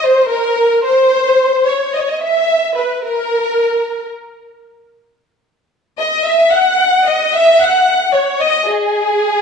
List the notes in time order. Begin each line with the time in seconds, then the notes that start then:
0.04 C5
0.29 A#4
0.85 C5
1.67 C#5
1.95 D#5
2.00 C#5
2.08 D#5
2.22 E5
2.77 B4
3.04 A#4
6.00 D#5
6.25 E5
6.52 F#5
7.06 D#5
7.35 E5
7.60 F#5
8.14 C#5
8.41 D#5
8.67 G#4